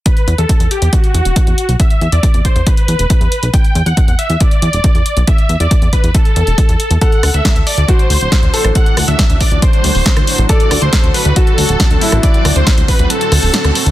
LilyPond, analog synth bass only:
\new Staff \with { instrumentName = "Analog synth bass" } { \clef bass \time 4/4 \key d \mixolydian \tempo 4 = 138 r8 e,16 e,16 r16 e,16 r16 e,16 r8 e,16 e,,16 r16 e,16 r16 b,,16 | r8 e,16 e,16 r16 e,16 r16 e,16 r8 e,16 e,,16 r16 e,16 r16 b,,16 | r8 e,16 e,16 r16 e,16 r16 e,16 r8 e,16 e,,16 r16 e,16 r16 b,,16 | r8 e,16 e,16 r16 e,16 r16 e,16 r8 e,16 e,,16 r16 e,16 r16 e,16 |
r8 d,16 d,16 r16 d,16 r16 d,16 r8 d,16 d,,16 r16 d,16 r16 a,,16 | r8 d,16 d,16 r16 d,16 r16 d,16 r8 d,16 d,,16 r16 d,16 r16 a,,16 | r8 d,16 d,16 r16 d,16 r16 d,16 r8 d,16 d,,16 r16 d,16 r16 a,,16 | r8 d,16 d,16 r16 d,16 r16 d,16 r8 d,16 d,,16 r16 d,16 r16 d,16 | }